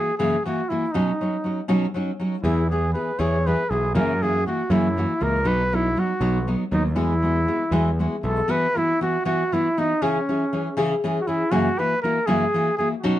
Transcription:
Already playing: nylon-string guitar A#3 E4 F#4, trumpet G#4
0.18 nylon-string guitar F#2 C#3 E3 A#3 E4 F#4, trumpet G#4
0.46 nylon-string guitar E3 A#3 E4 F#4, trumpet F#4
0.69 nylon-string guitar E3 A#3 E4 F#4, trumpet E4
0.92 nylon-string guitar B2 F#3 C#4 D#4 F#4, trumpet D#4
1.21 nylon-string guitar F#3 C#4 D#4 F#4
1.44 nylon-string guitar F#3 C#4 D#4 F#4
1.68 nylon-string guitar B2 F#3 C#4 D#4 F#4
1.94 nylon-string guitar F#3 C#4 D#4 F#4
2.19 nylon-string guitar F#3 C#4 D#4 F#4
2.43 picked electric bass E2, nylon-string guitar E3 B3 E4 G#4, trumpet E4
2.70 nylon-string guitar E3 B3 E4 G#4, trumpet G#4
2.93 nylon-string guitar E3 B3 E4 G#4, trumpet B4
3.19 picked electric bass E2, nylon-string guitar E3 B3 E4 G#4, trumpet C#5
3.46 nylon-string guitar E3 B3 E4 G#4, trumpet B4
3.70 picked electric bass B1, nylon-string guitar E3 B3 E4 G#4, trumpet G#4
3.95 picked electric bass F#2, nylon-string guitar F#2 C#3 E3 A#3 E4 F#4, trumpet A#4
4.22 nylon-string guitar E3 A#3 E4 F#4, trumpet G#4
4.46 nylon-string guitar E3 A#3 E4 F#4, trumpet F#4
4.70 picked electric bass F#2, nylon-string guitar F#2 C#3 E3 A#3 E4 F#4, trumpet E4
4.97 nylon-string guitar E3 A#3 E4 F#4
5.20 picked electric bass C#2, nylon-string guitar E3 A#3 E4 F#4, trumpet A#4
5.44 picked electric bass B1, nylon-string guitar B2 F#3 B3 D#4 F#4, trumpet B4
5.72 nylon-string guitar F#3 B3 D#4 F#4, trumpet E4
5.96 nylon-string guitar F#3 B3 D#4 F#4, trumpet F#4
6.21 picked electric bass B1, nylon-string guitar B2 F#3 B3 D#4 F#4
6.47 nylon-string guitar F#3 B3 D#4 F#4
6.71 picked electric bass D#2, nylon-string guitar F#3 B3 D#4 F#4, trumpet D#4
6.95 picked electric bass E2, nylon-string guitar E3 G#3 B3 E4 F#4, trumpet E4
7.22 nylon-string guitar G#3 B3 E4 F#4
7.47 nylon-string guitar G#3 B3 E4 F#4
7.71 picked electric bass E2, nylon-string guitar E3 G#3 B3 E4 F#4
7.99 nylon-string guitar G#3 B3 E4 F#4
8.23 picked electric bass B1, nylon-string guitar G#3 B3 E4 F#4, trumpet A4
8.48 nylon-string guitar E3 B3 E4 F#4, trumpet B4
8.75 nylon-string guitar E3 B3 E4 F#4, trumpet E4
9.01 nylon-string guitar E3 B3 E4 F#4, trumpet F#4
9.25 nylon-string guitar E3 B3 E4 F#4, trumpet F#4
9.52 nylon-string guitar E3 B3 E4 F#4, trumpet E4
9.77 nylon-string guitar E3 B3 E4 F#4, trumpet D#4
10.02 nylon-string guitar C#3 E3 C#4 E4 G#4, trumpet C#4
10.29 nylon-string guitar E3 C#4 E4 G#4
10.53 nylon-string guitar E3 C#4 E4 G#4
10.77 nylon-string guitar C#3 E3 C#4 E4 G#4
11.04 nylon-string guitar E3 C#4 E4 G#4
11.21 trumpet F#4
11.27 nylon-string guitar E3 C#4 E4 G#4, trumpet E4
11.51 nylon-string guitar F#2 C#3 E3 A#3 E4 F#4, trumpet F#4
11.78 nylon-string guitar E3 A#3 E4 F#4, trumpet B4
12.02 nylon-string guitar E3 A#3 E4 F#4, trumpet A#4
12.26 nylon-string guitar F#2 C#3 E3 A#3 E4 F#4, trumpet G#4
12.54 nylon-string guitar E3 A#3 E4 F#4
12.77 nylon-string guitar E3 A#3 E4 F#4, trumpet G#4
13.01 nylon-string guitar B2 F#3 C#4 D#4 F#4, trumpet F#4

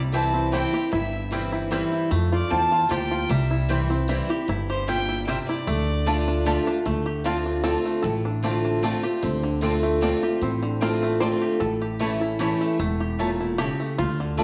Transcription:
Already playing: upright bass C2, steel-string acoustic guitar C3, five-string banjo G3 E4
0.12 steel-string acoustic guitar E3 G3 C4 E4, five-string banjo E3, mandolin C4 E4 C5 G5, fiddle A5
0.34 five-string banjo C4
0.52 steel-string acoustic guitar E3 G3 C4 E4, mandolin C4 E4 C5 G5, five-string banjo E4, fiddle G5
0.72 steel-string acoustic guitar C4 E4, five-string banjo G4
0.92 upright bass G1, steel-string acoustic guitar G2, five-string banjo E4, fiddle E5
1.31 steel-string acoustic guitar E3 G3 C4 E4, five-string banjo G3, mandolin C4 E4 C5 G5
1.52 five-string banjo E4
1.71 steel-string acoustic guitar E3 G3 C4 E4, five-string banjo G3, mandolin C4 E4 C5 G5
1.93 five-string banjo E4
2.11 steel-string acoustic guitar F2, upright bass F2, five-string banjo A3
2.32 five-string banjo F4, fiddle D5
2.50 upright bass E2, steel-string acoustic guitar A2, mandolin C4 F4 C5 A5, fiddle A5
2.72 five-string banjo F4
2.89 upright bass D2, steel-string acoustic guitar A#2, mandolin C4 F4 C5 A5, five-string banjo G4, fiddle G5
3.11 five-string banjo F4
3.29 upright bass C2, steel-string acoustic guitar C3, five-string banjo G3, fiddle E5
3.51 five-string banjo E4
3.69 steel-string acoustic guitar E3 G3 C4 E4, five-string banjo E3, mandolin C4 E4 C5 G5
3.89 five-string banjo C4, steel-string acoustic guitar C4 E4
4.08 steel-string acoustic guitar E3 G3 C4 E4, mandolin C4 E4 C5 G5, five-string banjo E4
4.29 steel-string acoustic guitar C4 E4, five-string banjo G4
4.48 upright bass G1, steel-string acoustic guitar G2, five-string banjo E4
4.69 five-string banjo G4, fiddle C5
4.88 steel-string acoustic guitar A#2, five-string banjo G3, mandolin C4 E4 C5 G5, fiddle G5
5.09 five-string banjo E4
5.27 steel-string acoustic guitar C3, five-string banjo G3, mandolin C4 E4 C5 G5, fiddle E5
5.47 five-string banjo E4, fiddle D5
5.67 upright bass D2, steel-string acoustic guitar D3, five-string banjo A3
6.06 steel-string acoustic guitar D3 A3 D4 F4, five-string banjo D3, mandolin A3 F4 D5 A5
6.28 five-string banjo D4
6.45 steel-string acoustic guitar D3 A3 D4 F4, mandolin A3 F4 D5 A5, five-string banjo G4
6.66 five-string banjo D4, steel-string acoustic guitar D4 F4
6.85 upright bass D2, steel-string acoustic guitar D3, five-string banjo A3
7.06 five-string banjo G4
7.24 steel-string acoustic guitar D3 A3 C4 F4, mandolin C4 F4 D5 A5, five-string banjo F4
7.46 five-string banjo D4
7.64 steel-string acoustic guitar D3 A3 C4 F4, mandolin C4 F4 D5 A5, five-string banjo A4
7.86 five-string banjo A3
8.03 upright bass A1, steel-string acoustic guitar A2, five-string banjo A4
8.25 five-string banjo D4
8.43 steel-string acoustic guitar D3 A3 C4 F4, five-string banjo A3, mandolin C4 F4 D5 A5
8.65 five-string banjo D4
8.82 steel-string acoustic guitar D3 A3 C4 F4, five-string banjo A3, mandolin C4 F4 D5 A5
9.03 steel-string acoustic guitar C4 F4, five-string banjo G4
9.22 upright bass D2, steel-string acoustic guitar D3, five-string banjo C4
9.43 five-string banjo D3
9.61 steel-string acoustic guitar D3 A3 C4 F4, mandolin C4 F4 D5 A5, five-string banjo D4
9.83 five-string banjo A3
10.01 steel-string acoustic guitar D3 A3 C4 F4, mandolin C4 F4 D5 A5, five-string banjo D4
10.22 steel-string acoustic guitar C4 F4, five-string banjo G4
10.41 upright bass A1, steel-string acoustic guitar A2, five-string banjo C4
10.63 five-string banjo D3
10.81 steel-string acoustic guitar D3 A3 C4 F4, mandolin C4 F4 D5 A5, five-string banjo F4
11.03 five-string banjo A3
11.20 steel-string acoustic guitar D3 A3 C4 F4, mandolin C4 F4 D5 A5, five-string banjo C5
11.42 five-string banjo G4
11.60 upright bass A1, steel-string acoustic guitar A2, five-string banjo A4
11.82 five-string banjo G4
11.99 steel-string acoustic guitar E3 A3 C#4 E4, mandolin A3 E4 C#5 A5, five-string banjo A3
12.20 steel-string acoustic guitar C#4 E4, five-string banjo E4
12.39 steel-string acoustic guitar E3 A3 C#4 E4, mandolin A3 E4 C#5 A5, five-string banjo G4
12.61 five-string banjo A3
12.79 upright bass E1, steel-string acoustic guitar E2, five-string banjo A3
13.00 five-string banjo G4
13.19 steel-string acoustic guitar A#2, mandolin A3 E4 C#5 A5, five-string banjo A3
13.40 five-string banjo E4
13.58 steel-string acoustic guitar C#3, mandolin A3 E4 C#5 A5, five-string banjo G4
13.80 five-string banjo A3
13.98 upright bass D2, steel-string acoustic guitar D3, five-string banjo F4
14.20 five-string banjo D3
14.37 steel-string acoustic guitar D3 A3 D4 F4, mandolin A3 F4 D5 A5, five-string banjo D4

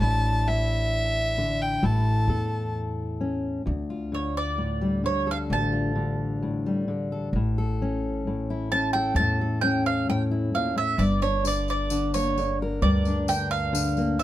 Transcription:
0.00 upright bass A1, steel-string acoustic guitar A2 D4 E4, fiddle A5
0.48 steel-string acoustic guitar E4, fiddle E5
1.38 steel-string acoustic guitar D3
1.62 fiddle G5
1.83 upright bass A1, steel-string acoustic guitar A2 E4 A4, fiddle A5
2.27 upright bass E2, steel-string acoustic guitar A4
3.21 steel-string acoustic guitar C#4
3.66 steel-string acoustic guitar D2, upright bass D2
3.90 steel-string acoustic guitar F4
4.12 steel-string acoustic guitar D3, mandolin C#5
4.37 mandolin D5
4.58 steel-string acoustic guitar A2
4.81 steel-string acoustic guitar G3
5.04 steel-string acoustic guitar D3, mandolin C#5
5.27 steel-string acoustic guitar A4
5.31 mandolin F5
5.50 upright bass A1, steel-string acoustic guitar D2, mandolin A5
5.72 steel-string acoustic guitar F4
5.95 steel-string acoustic guitar D3
6.43 steel-string acoustic guitar A2
6.66 steel-string acoustic guitar G3
6.88 steel-string acoustic guitar D3
7.12 steel-string acoustic guitar A4
7.33 upright bass A1, steel-string acoustic guitar A2
7.58 steel-string acoustic guitar A4
7.82 steel-string acoustic guitar C#4
8.27 steel-string acoustic guitar A2
8.50 steel-string acoustic guitar E4
8.72 steel-string acoustic guitar C#4, mandolin A5
8.93 steel-string acoustic guitar A4, mandolin G5
9.15 upright bass E2, mandolin A5
9.19 steel-string acoustic guitar A2
9.41 steel-string acoustic guitar A4
9.61 steel-string acoustic guitar C#4, mandolin G5
9.86 mandolin F5
10.09 steel-string acoustic guitar A2, mandolin G5
10.31 steel-string acoustic guitar E4
10.54 steel-string acoustic guitar A#2, mandolin F5
10.75 steel-string acoustic guitar A2, mandolin E5
10.98 upright bass G1, steel-string acoustic guitar G2, mandolin D5, tambourine
11.22 steel-string acoustic guitar D4, mandolin C#5, tambourine
11.44 steel-string acoustic guitar D3, mandolin D5, tambourine
11.68 mandolin D5, tambourine
11.90 steel-string acoustic guitar D3, tambourine
12.14 steel-string acoustic guitar A#3, mandolin C#5, tambourine
12.38 steel-string acoustic guitar D3, tambourine
12.62 steel-string acoustic guitar A#4
12.82 upright bass D2, steel-string acoustic guitar G2, mandolin D5
13.05 steel-string acoustic guitar D4, tambourine
13.28 steel-string acoustic guitar D3, mandolin G5, tambourine
13.51 mandolin F5, tambourine
13.73 steel-string acoustic guitar D3, tambourine
13.97 steel-string acoustic guitar A#3, tambourine
14.18 steel-string acoustic guitar D3, mandolin E5, tambourine

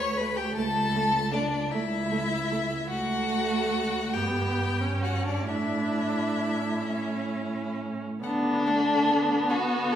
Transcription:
Already playing: cello D2
0.00 violin C#5 C#6
0.17 viola A3, violin B4 B5
0.36 violin G4 G5
0.55 cello C#2, viola A3, violin A4 A5
0.96 viola A3
1.32 viola A3, violin D4 D5
1.72 cello C#2, viola A3, violin E4 E5
2.12 viola A3
2.51 viola A3
2.90 cello D2, viola A3, violin F#4 F#5
4.14 cello G2, viola B3, violin G4 G5
4.80 viola C#4
5.03 violin F#4 F#5
5.24 violin D4 D5
5.47 cello A2, viola D4, violin E4 E5
6.87 viola C#4
8.22 cello D3, viola B3, violin D4 F#5
8.67 viola A3, violin F#5
9.08 viola B3, violin F#5
9.50 cello D3, violin F#4 F#5
9.92 violin A4 F#5

